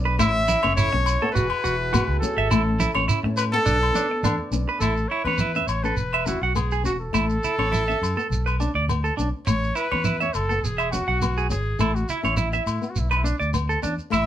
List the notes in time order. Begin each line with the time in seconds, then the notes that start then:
Already playing: B1 B3 C#4 D4 A4
0.05 B4
0.19 A1 A3 C#4 E4 E5, low agogo, shekere
0.48 E4, muted conga, high conga, shekere
0.63 F#1 C#4 C#5, low agogo
0.75 E4 C#5, shekere
0.93 B1 C#4, muted clean electric guitar stroke
1.06 low agogo, shekere
1.22 B3 A4
1.32 E1 F#4 G#4 B4, muted conga, shekere
1.37 F#4
1.50 low agogo
1.64 E1 F#4, shekere
1.93 B3 F#4, high conga, low agogo, shekere
2.08 C#2
2.19 C#4 A4, muted conga, high conga, shekere
2.37 G#1 E5
2.49 A1 A3 C#4 E4 A4, muted conga, low agogo, shekere
2.80 E4, muted conga, high conga, low conga, shekere
2.95 A1 C#4 C#5, low agogo
3.08 E4, low conga, shekere
3.23 A2 C#4, muted clean electric guitar stroke
3.36 B4, low agogo, shekere
3.52 B3 A4
3.64 B1 B3 D4, muted conga, shekere
3.83 low agogo
3.94 C#4 D4, high conga, shekere
4.11 muted clean electric guitar stroke
4.23 E2 B3 D4, high conga, low agogo, shekere
4.51 B1 C#4, muted conga, shekere
4.69 B4
4.79 A1 A3 E4 A4, muted conga, low agogo, shekere
4.97 shekere
5.08 E4 C#5, muted conga
5.24 E2 C#4 B4 C#5, low agogo
5.38 E4, high conga, shekere
5.55 C#4 E5, shekere
5.67 A1 C#5, low agogo, shekere
5.83 C#4 A4 B4, shekere
5.97 E1, muted conga, shekere
6.13 E5, low agogo
6.26 C#4 E4 F#4, high conga, shekere
6.42 B1 F#4 F#5
6.55 B3 G#4, high conga, low agogo, shekere
6.71 G#4, shekere
6.84 E1 C#4 F#4, muted conga, shekere
7.00 A4
7.13 A1 A3 E4, muted conga, low agogo, shekere
7.30 shekere
7.44 E4, muted conga, low conga, shekere
7.58 A1 C#4 C#5, low agogo
7.72 E4, high conga, shekere
7.88 C#4 E5, shekere
8.02 F#2, low agogo, shekere
8.17 B3 A4, shekere
8.30 B1, muted conga, low conga, shekere
8.46 B4, low agogo, shekere
8.60 C#4 D4, shekere
8.75 D2 D5
8.88 B3, high conga, low agogo, shekere
9.04 A4, shekere
9.17 B1 C#4 D4, muted conga, shekere
9.46 A1 A3 C#5, muted clean electric guitar stroke, muted conga, low agogo, shekere
9.63 shekere
9.75 E4 B4, muted conga, shekere
9.91 E2 C#4 C#5, low agogo
10.04 E4, high conga, shekere
10.20 C#4 C#5 E5, shekere
10.34 F#1 A4, low agogo, shekere
10.49 B3 A4, shekere
10.63 E1 G#4, muted conga, shekere
10.78 E5, low agogo, shekere
10.92 C#4 F#4, high conga, shekere
11.08 B1 F#5
11.21 B3, high conga, low agogo, shekere
11.38 G#4, shekere
11.50 G#1 C#4 G#4, muted clean electric guitar stroke, muted conga, shekere
11.79 A1 A3 E4 A4, muted conga, low agogo, shekere
11.95 F#4, shekere
12.09 E4, muted conga, low conga, shekere
12.23 A1 C#4 C#5, low agogo, shekere
12.37 E4, high conga, shekere
12.52 E5, muted nylon-string guitar stroke, shekere
12.66 A2, low agogo, shekere
12.82 B3, shekere
12.90 F#4
12.96 B1 E4, muted conga, low conga, shekere
13.09 D4 B4, low agogo, shekere
13.17 E4
13.23 C#4 D4, shekere
13.40 D2 D5, shekere
13.53 B3, high conga, low agogo, shekere
13.69 A4, shekere
13.83 E2 C#4 D4, muted conga, shekere
13.99 shekere
14.10 A1 A3 E4 E5, muted conga, low agogo, shekere